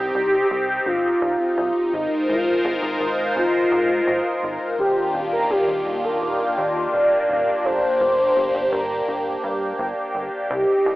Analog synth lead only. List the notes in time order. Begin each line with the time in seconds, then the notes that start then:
Already playing: G4
0.51 G4
0.87 F4
1.93 D#4
2.29 F4
2.79 D#4
3.36 F4
4.79 G4
5.33 A#4
5.51 G4
6.04 A#4
6.22 A#4
6.57 D5
7.65 C5
8.72 A#4
10.51 G4